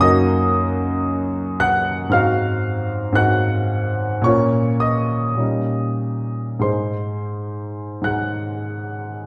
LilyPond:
\new Staff \with { instrumentName = "Grand piano" } { \time 4/4 \key aes \mixolydian \tempo 4 = 54 << { <ees'' ees'''>4. <ges'' ges'''>8 <f'' f'''>4 <ges'' ges'''>4 | <des'' des'''>8 <ees'' ees'''>4. <c'' c'''>4 <ges'' ges'''>4 | } \\ { <ges, bes ees' ges'>2 <aes, c' ees' ges'>4 <aes, c' ees' ges'>4 | <bes, bes des' f'>4 <bes, g des' ees'>4 <aes, aes ees' aes'>4 <aes, aes ees' aes'>4 | } >> }